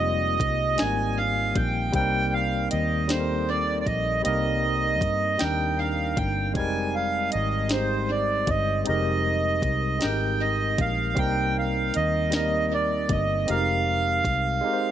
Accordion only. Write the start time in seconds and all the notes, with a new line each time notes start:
Already playing: D#5
0.79 G#5
1.18 F5
1.56 G5
1.95 G5
2.33 F5
2.71 D#5
3.10 C5
3.49 D5
3.80 D5
3.86 D#5
4.25 D#5
5.40 G5
5.78 F5
6.16 G5
6.56 G#5
6.95 F5
7.32 D#5
7.72 C5
8.11 D5
8.50 D#5
8.88 D#5
10.03 G5
10.41 D#5
10.81 F5
11.18 G5
11.59 F5
11.96 D#5
12.35 D#5
12.74 D5
13.11 D#5
13.49 F5